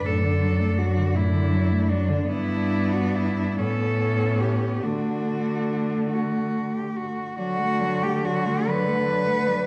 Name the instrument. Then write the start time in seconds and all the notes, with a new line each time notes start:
cello
Already playing: D4
0.05 F#2 A2 A4
0.23 D3
0.41 F#3
0.60 A3
0.78 F#3 F#4
0.97 D3
1.15 A2 E4
1.33 D3
1.51 F#3
1.71 A3
1.89 F#3 D4
2.09 D3
2.29 G2 B3 D4 E4
2.93 F#4
3.15 E4
3.58 A2 B3 C#4 A4
4.40 G4
4.82 D3 A3 D4 F#4
6.10 F#4
6.74 G4
6.96 F#4
7.36 D3 F#3 F#4 D5
7.57 A3 F#5
7.79 F#3 D5
8.01 A3 G4 F#5
8.24 F#3 F#4 D5
8.45 A3 F#5
8.67 F#3 B4 D5
8.87 A3 F#5
9.08 F#3 D5
9.26 A3 F#5
9.47 F#3 D5